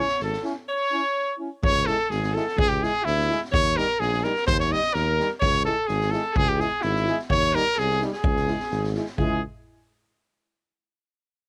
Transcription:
Already playing: C#5
0.08 snare
0.20 G#1 A4, snare
0.24 A4
0.33 snare
0.44 C#4 E4, snare
0.68 C#5
0.92 C#4 E4
1.39 C#4 E4
1.63 C#2 C#5, kick
1.85 G#3 E4 A4, snare
2.10 G#1 G#4, snare
2.23 snare
2.33 G#3 E4 A4, snare
2.48 snare
2.57 C#2 G#4, kick
2.69 G4
2.80 G#3 E4 G#4, snare
3.02 D2 E4
3.07 snare
3.20 snare
3.28 G#3 E4, snare
3.45 snare
3.51 D#2 C#5, kick
3.76 G3 D#4 A#4, snare
4.00 A#1 G#4, snare
4.13 snare
4.23 G3 D#4 A#4, snare
4.36 snare
4.47 D#2 C5, kick
4.60 C#5, snare
4.69 G3 D#4 D#5
4.74 snare
4.84 snare
4.94 D#2 A#4, snare
5.17 G3 D#4, snare
5.40 C#2 C#5, kick
5.65 G#3 E4 A4
5.87 G#1 G#4, snare
6.01 snare
6.10 G#3 E4 A4, snare
6.33 G#4, kick
6.37 C#2 G#4
6.44 G4
6.49 G4
6.55 E4 G#4
6.60 G#3 G#4, snare
6.81 G#1 E4, snare
6.96 snare
7.06 G#3 E4, snare
7.19 snare
7.30 D#2 C#5, kick
7.52 G3 D#4 A#4, snare
7.75 C2 G#4, snare
7.90 snare
8.01 G3 D#4, snare
8.13 G#4, snare
8.24 C#2, kick
8.36 snare
8.47 G#3 E4, snare
8.60 snare
8.71 G#1, snare
8.83 snare
8.94 G#3 E4, snare
9.06 snare
9.18 C#2 G#3 E4 G#4, kick

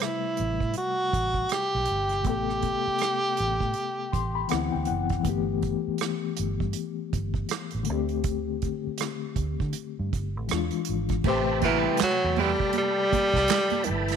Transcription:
Already playing: C3 G3 A3 B4
0.02 E4, cross-stick
0.37 A1, closed hi-hat
0.60 A2, kick
0.74 F#4, closed hi-hat
1.13 A1, kick, closed hi-hat
1.34 kick
1.49 G4, cross-stick, closed hi-hat
1.75 B1
1.86 closed hi-hat
1.90 G1
2.09 cross-stick, closed hi-hat
2.20 C3 A3
2.25 A1 B3 G4, kick, closed hi-hat
2.29 A4
2.50 cross-stick
2.62 kick, closed hi-hat
2.87 muted fingered electric bass stroke
2.99 cross-stick, closed hi-hat
3.37 A1, closed hi-hat
3.61 A2, kick
3.74 closed hi-hat
4.13 A1 C6, kick, closed hi-hat
4.35 B5
4.48 E3 B3 C4 F#5, cross-stick, closed hi-hat
4.52 D2 E4
4.72 D2 G5
4.85 F#5, closed hi-hat
4.90 F#1
5.09 kick, cross-stick, closed hi-hat
5.20 E3 A3
5.25 G1 B3, kick, closed hi-hat
5.29 G4
5.63 kick, closed hi-hat
5.88 muted fingered electric bass stroke
5.98 cross-stick, closed hi-hat
6.37 G1, closed hi-hat
6.60 G2, kick
6.73 closed hi-hat
7.13 G1, kick, closed hi-hat
7.34 kick
7.49 cross-stick, closed hi-hat
7.71 A1, closed hi-hat
7.83 D3 A3, closed hi-hat
7.89 D2 C4 G4
8.09 closed hi-hat
8.24 kick, closed hi-hat
8.62 kick, closed hi-hat
8.87 muted fingered electric bass stroke
8.98 cross-stick, closed hi-hat
9.36 D2, kick, closed hi-hat
9.60 D3, kick
9.73 closed hi-hat
9.99 G2
10.13 G1, kick, closed hi-hat
10.37 A1
10.48 E3 G#3 D4, cross-stick, closed hi-hat
10.52 E2 F4
10.71 closed hi-hat
10.85 closed hi-hat
10.89 G#1
11.09 kick, cross-stick, closed hi-hat
11.21 C3 A3, kick, crash
11.25 A1 C3 A4 B4 G5 A5 B5, muted conga
11.30 G5
11.62 E3 F#3 B3 D#4 A#4, kick, closed hi-hat, muted conga, high conga
11.77 G3 C4 E4 B4
11.97 snare, clap, closed hi-hat, muted conga
12.02 F#3, muted fingered electric bass stroke
12.24 E2
12.36 G3 C4 E4 B4, open hi-hat, muted conga, high conga, low conga
12.41 G3
12.60 kick
12.73 closed hi-hat, muted conga, high conga
12.78 G3
13.12 muted fingered electric bass stroke, kick, closed hi-hat, high conga
13.34 C2, kick, snare
13.48 snare, clap, closed hi-hat
13.70 closed hi-hat, high conga
13.84 D#3, closed hi-hat, muted conga, low conga
13.90 G1 E3
14.08 snare, closed hi-hat

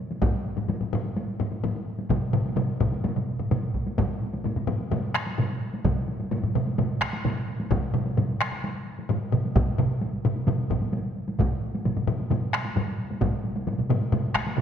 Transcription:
0.11 taiko high
0.22 taiko, taiko low-mid, taiko high
0.57 taiko low-mid, taiko high
0.68 taiko low-mid, taiko high
0.81 taiko low-mid
0.93 taiko low-mid
1.05 taiko high
1.17 taiko high
1.40 taiko low-mid
1.52 taiko high
1.64 taiko low-mid, taiko high
1.75 taiko high
1.99 taiko high
2.10 taiko, taiko low-mid, taiko mid, taiko high
2.33 taiko low-mid, taiko mid
2.46 taiko high
2.57 taiko low-mid, taiko mid, taiko high
2.81 taiko, taiko low-mid, taiko mid
2.92 taiko high
3.04 taiko low-mid, taiko mid, taiko high
3.16 taiko low-mid, taiko mid
3.39 taiko low-mid, taiko mid
3.51 taiko low-mid, taiko mid, taiko high
3.63 taiko high
3.74 taiko
3.86 taiko high
3.98 taiko, taiko low-mid, taiko mid, taiko high
4.22 taiko high
4.33 taiko high
4.44 taiko low-mid, taiko mid, taiko high
4.56 taiko low-mid, taiko mid
4.67 taiko low-mid, taiko mid
4.80 taiko high
4.91 taiko low-mid, taiko mid, taiko high
5.15 taiko rim
5.27 taiko high
5.38 taiko low-mid, taiko mid, taiko high
5.74 taiko high
5.85 taiko, taiko low-mid, taiko mid, taiko high
6.08 taiko high
6.20 taiko high
6.31 taiko low-mid, taiko mid, taiko high
6.43 taiko low-mid, taiko mid
6.55 taiko low-mid, taiko mid
6.67 taiko high
6.78 taiko low-mid, taiko mid, taiko high
7.01 taiko rim, taiko
7.13 taiko high
7.25 taiko low-mid, taiko mid, taiko high
7.60 taiko high
7.71 taiko, taiko low-mid, taiko mid, taiko high
7.94 taiko low-mid, taiko mid, taiko high
8.06 taiko high
8.17 taiko low-mid, taiko mid, taiko high
8.41 taiko rim
8.52 taiko high
8.64 taiko high
8.99 taiko high
9.09 taiko low-mid, taiko mid, taiko high
9.32 taiko low-mid, taiko mid
9.45 taiko high
9.55 taiko, taiko low-mid, taiko mid, taiko high
9.78 taiko low-mid, taiko mid, taiko high
10.01 taiko high
10.25 taiko low-mid, taiko mid
10.36 taiko high
10.47 taiko low-mid, taiko mid, taiko high
10.70 taiko, taiko low-mid, taiko mid
10.82 taiko high
10.93 taiko high
11.28 taiko high
11.39 taiko, taiko low-mid, taiko mid, taiko high
11.75 taiko high
11.85 taiko low-mid, taiko mid, taiko high
11.96 taiko low-mid, taiko mid
12.07 taiko low-mid, taiko mid
12.20 taiko high
12.30 taiko low-mid, taiko mid, taiko high
12.53 taiko rim
12.65 taiko high
12.76 taiko low-mid, taiko mid, taiko high
13.11 taiko high
13.21 taiko, taiko low-mid, taiko mid, taiko high
13.44 taiko high
13.56 taiko high
13.67 taiko low-mid, taiko mid, taiko high
13.79 taiko low-mid, taiko mid
13.89 taiko low-mid, taiko mid
14.01 taiko high
14.12 taiko low-mid, taiko mid, taiko high
14.35 taiko rim, taiko
14.47 taiko high
14.57 taiko low-mid, taiko mid, taiko high

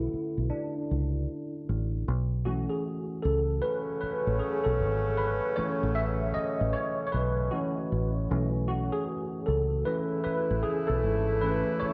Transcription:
Already playing: D3 A3 C#4 E4 F#4 A4
0.14 muted fingered electric bass stroke
0.38 B1
0.50 D4
0.91 C#2
1.69 A1
2.08 B1
2.45 E3 A3 C#4 F#4
2.69 G#4
3.22 C#2 A4
3.62 C#3 F#3 A3 C#4 B4
4.01 B4, muted fingered electric bass stroke
4.27 A1
4.39 G#4
4.64 B1 A4
4.81 G#1
5.17 B4
5.56 E3 A3 C#4 C#5, muted fingered electric bass stroke
5.83 A1
5.95 E5
6.34 D#5, muted fingered electric bass stroke
6.61 A1
6.73 C#5
7.07 C#5
7.12 B1 B4
7.51 E3 A3 C#4 F#4
7.92 A1
8.30 B1 E3 A3 C#4
8.68 F#4
8.92 G#4
9.46 C#2 A4
9.84 C#3 E3 A3 C#4 E4 B4
10.24 B4, muted fingered electric bass stroke
10.51 A1
10.63 G#4
10.87 B1 A4
11.04 G#1
11.41 E3 A3 C#4 B4
11.80 C#5, muted fingered electric bass stroke

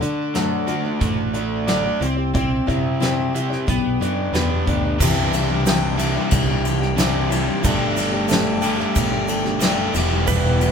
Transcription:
Already playing: D3
0.00 D3 A3 D4 F#4 D5, closed hi-hat
0.35 D3 F#3 A3 D4 F#4 D5, snare, closed hi-hat
0.67 A3 D4 F#4 D5, closed hi-hat
0.84 A3 D4 F#4 D5
1.00 A1 A3, kick, closed hi-hat
1.33 A3 D4 F#4 D5, closed hi-hat
1.67 D3 F#3 A3 D4 F#4 D5, snare, closed hi-hat
1.84 A3 D4 F#4 D5
2.00 C2 C4 E4 G4 D5, closed hi-hat
2.16 E4 G4 D5
2.33 C4 E4 G4 D5, kick, closed hi-hat
2.66 C3 C4 E4 G4 D5, kick, closed hi-hat
3.00 C4 E4 G4 D5, snare, closed hi-hat
3.33 C4 E4 G4 D5, closed hi-hat
3.50 E4 G4 D5, snare
3.66 B1 B3 D4 G4 D5, kick, closed hi-hat
4.00 F#2 B3 D4 G4 D5, closed hi-hat
4.32 E2 B3 D4 G4 B4 D5, snare, closed hi-hat
4.48 D4 G4 D5
4.66 D2 B3 D4 G4 D5, kick, closed hi-hat
4.84 D4 G4 D5
5.00 C2 C3 E3 G3 D4 E4 G4, kick, crash, shaker
5.33 E3 G3 D4 G4, ride, shaker
5.49 G3 D4 G4
5.65 C3 E3 G3 D4 G4, snare, ride, shaker
5.97 C3 E3 G3 E4 G4, ride, shaker
6.15 G3 D4 G4
6.31 C2, kick, ride, shaker
6.48 G3 D4 G4
6.64 E3 G3 D4 G4, ride, shaker
6.80 G3 D4 G4, snare
6.97 C3 E3 G3 D4 E4 G4, snare, ride, shaker
7.29 E3 G3 D4 G4, ride, shaker
7.47 G3 D4 G4
7.63 G1 G3 A3 D4 G4, kick, ride, shaker
7.96 G3 A3 D4 G4, ride, shaker
8.12 A3 D4 G4
8.28 G3 A3 D4 G4, snare, ride, shaker
8.62 G3 A3 D4 G4, ride, shaker
8.77 A3 D4 G4, snare
8.96 G1, kick, ride, shaker
9.11 A3 D4 G4
9.28 G3 A3 D4 G4, ride, shaker
9.44 A3 D4 G4, snare
9.61 G3 A3 D4 G4, snare, ride, shaker
9.93 E1 E2 B2 E3 G3 B3 E4 F#4, ride, shaker
9.97 G4
10.10 E3 G3 E4 F#4
10.26 E2 B2 E3 G3 E4 B4, kick, crash, shaker
10.59 E3 G3 E4 F#4, ride, shaker

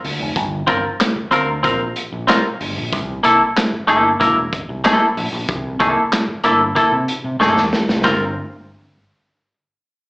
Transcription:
0.04 D2, open hi-hat
0.20 F1
0.36 G1, kick, closed hi-hat
0.67 G1 C4 F4 A#4, kick, closed hi-hat
1.00 snare, clap, closed hi-hat
1.16 muted fingered electric bass stroke
1.31 D2 C4 F4 A#4, closed hi-hat
1.63 A#1 C4 F4 A#4, kick, closed hi-hat
1.96 closed hi-hat
2.12 A#1
2.27 C4 F4 A#4, snare, clap, closed hi-hat
2.60 G1, open hi-hat
2.77 A#1
2.93 C2, kick, closed hi-hat
3.23 C2 A#3 E4 A4, closed hi-hat
3.57 snare, clap, closed hi-hat
3.73 muted fingered electric bass stroke
3.87 G1 A#3 E4 A4, closed hi-hat
4.20 E1 A#3 E4 A#4, kick, closed hi-hat
4.53 kick, closed hi-hat
4.69 C2
4.84 A#3 E4 A4, snare, clap, closed hi-hat
5.17 A#1, open hi-hat
5.32 A#1
5.49 C2, kick, closed hi-hat
5.80 C2 A#3 E4 A4, kick, closed hi-hat
6.12 snare, clap, closed hi-hat
6.28 muted fingered electric bass stroke
6.44 G1 A#3 E4 A4, closed hi-hat
6.75 A#3 E4 A4, kick, closed hi-hat
6.92 C3
7.08 closed hi-hat
7.24 C3
7.40 G2 A#3 E4 A4, snare
7.56 E2, snare
7.73 snare
7.88 C2, snare
8.04 G1 C4 F4 A#4, kick, snare

